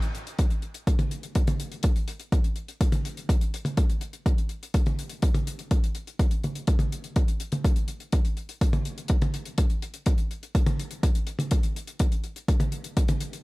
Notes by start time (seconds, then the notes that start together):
0.02 closed hi-hat
0.15 closed hi-hat
0.27 closed hi-hat
0.39 kick, closed hi-hat
0.50 closed hi-hat
0.62 closed hi-hat
0.74 closed hi-hat
0.87 kick, closed hi-hat
0.99 closed hi-hat, high tom
1.11 closed hi-hat
1.23 closed hi-hat
1.35 kick, closed hi-hat
1.47 closed hi-hat, high tom
1.60 closed hi-hat
1.72 closed hi-hat
1.83 kick, closed hi-hat
1.96 closed hi-hat
2.08 closed hi-hat
2.20 closed hi-hat
2.32 kick, closed hi-hat
2.44 closed hi-hat
2.56 closed hi-hat
2.68 closed hi-hat
2.81 kick, closed hi-hat
2.92 closed hi-hat, high tom
3.05 closed hi-hat
3.17 closed hi-hat
3.29 kick, closed hi-hat
3.41 closed hi-hat
3.54 closed hi-hat
3.65 closed hi-hat, high tom
3.77 kick, closed hi-hat
3.90 closed hi-hat
4.01 closed hi-hat
4.13 closed hi-hat
4.26 kick, closed hi-hat
4.38 closed hi-hat
4.49 closed hi-hat
4.63 closed hi-hat
4.74 kick, closed hi-hat
4.86 closed hi-hat, high tom
4.99 closed hi-hat
5.09 closed hi-hat
5.22 kick, closed hi-hat
5.34 closed hi-hat, high tom
5.47 closed hi-hat
5.59 closed hi-hat
5.71 kick, closed hi-hat
5.84 closed hi-hat
5.95 closed hi-hat
6.07 closed hi-hat
6.19 kick, closed hi-hat
6.31 closed hi-hat
6.44 closed hi-hat, high tom
6.55 closed hi-hat
6.67 kick, closed hi-hat
6.79 closed hi-hat, high tom
6.92 closed hi-hat
7.04 closed hi-hat
7.16 kick, closed hi-hat
7.28 closed hi-hat
7.40 closed hi-hat
7.52 closed hi-hat, high tom
7.65 kick, closed hi-hat
7.76 closed hi-hat
7.88 closed hi-hat
8.00 closed hi-hat
8.12 kick, closed hi-hat
8.25 closed hi-hat
8.37 closed hi-hat
8.49 closed hi-hat
8.61 kick, closed hi-hat
8.73 closed hi-hat, high tom
8.85 closed hi-hat
8.98 closed hi-hat
9.08 kick, closed hi-hat
9.22 closed hi-hat, high tom
9.34 closed hi-hat
9.46 closed hi-hat
9.58 kick, closed hi-hat
9.70 closed hi-hat
9.82 closed hi-hat
9.94 closed hi-hat
10.06 kick, closed hi-hat
10.18 closed hi-hat
10.31 closed hi-hat
10.43 closed hi-hat
10.55 kick, closed hi-hat
10.66 closed hi-hat, high tom
10.79 closed hi-hat
10.91 closed hi-hat
11.03 kick, closed hi-hat
11.15 closed hi-hat
11.27 closed hi-hat
11.39 closed hi-hat, high tom
11.51 kick, closed hi-hat
11.63 closed hi-hat
11.76 closed hi-hat
11.87 closed hi-hat
11.99 kick, closed hi-hat
12.12 closed hi-hat
12.24 closed hi-hat
12.36 closed hi-hat
12.48 kick, closed hi-hat
12.60 closed hi-hat, high tom
12.72 closed hi-hat
12.84 closed hi-hat
12.97 kick, closed hi-hat
13.08 closed hi-hat, high tom
13.21 closed hi-hat
13.33 closed hi-hat